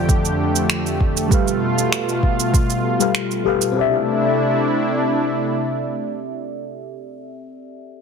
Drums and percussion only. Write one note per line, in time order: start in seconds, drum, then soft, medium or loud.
0.09 kick loud
0.09 shaker soft
0.25 shaker soft
0.56 shaker medium
0.70 finger snap medium
0.70 shaker soft
0.86 shaker soft
1.01 kick medium
1.17 shaker medium
1.31 kick loud
1.31 shaker soft
1.48 shaker soft
1.78 shaker medium
1.92 finger snap medium
1.92 shaker soft
2.09 shaker soft
2.23 kick medium
2.40 shaker medium
2.54 kick loud
2.54 shaker soft
2.70 shaker soft
3.00 shaker medium
3.15 finger snap medium
3.15 shaker soft
3.31 shaker soft
3.62 shaker medium